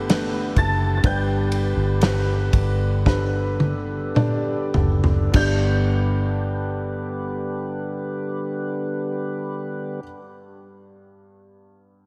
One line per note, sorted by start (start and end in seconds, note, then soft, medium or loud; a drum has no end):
0.00 0.52 G1 medium
0.00 5.30 D3 medium
0.00 0.09 A3 medium
0.00 1.00 A3 medium
0.00 0.09 B3 medium
0.00 1.00 B3 medium
0.00 0.09 D4 medium
0.00 0.09 G4 medium
0.00 5.30 G4 medium
0.00 1.00 A4 medium
0.00 0.10 B4 medium
0.00 0.53 G5 medium
0.00 0.61 G6 loud
0.09 0.99 A3 medium
0.09 0.99 B3 medium
0.09 0.99 D4 medium
0.09 0.99 G4 medium
0.09 0.99 B4 medium
0.09 snare loud
0.09 ride medium
0.56 1.01 F#1 medium
0.56 0.95 A5 medium
0.56 0.96 A6 loud
0.56 kick medium
0.56 ride medium
0.97 1.04 A6 medium
1.03 1.73 G1 loud
1.03 2.49 G2 medium
1.03 5.31 G3 medium
1.03 5.30 B3 medium
1.03 1.97 D4 medium
1.03 1.97 G4 medium
1.03 3.04 B4 medium
1.03 1.98 B4 medium
1.03 4.13 G5 medium
1.03 4.13 G6 loud
1.03 kick loud
1.03 ride medium
1.52 ride medium
1.77 2.49 G1 loud
2.01 3.00 D4 medium
2.01 3.01 G4 medium
2.01 3.01 B4 medium
2.01 snare loud
2.01 ride medium
2.53 4.71 G1 loud
2.53 kick medium
2.53 ride medium
3.05 4.11 D4 medium
3.05 4.11 G4 medium
3.05 5.32 A4 medium
3.05 4.11 B4 loud
3.05 kick medium
3.05 snare medium
3.60 high tom medium
4.15 5.28 D4 medium
4.15 5.28 G4 medium
4.15 5.29 D5 loud
4.15 mid tom medium
4.74 5.31 F#1 medium
4.74 floor tom medium
5.04 floor tom medium
5.32 10.02 G1 loud
5.32 10.02 G2 medium
5.32 10.00 D3 medium
5.32 10.00 G3 medium
5.32 10.00 B3 medium
5.32 10.01 D4 medium
5.32 10.01 G4 medium
5.32 10.03 G4 medium
5.32 10.00 B4 medium
5.32 kick loud
5.32 crash medium
5.36 10.04 D5 medium
5.36 10.04 G6 medium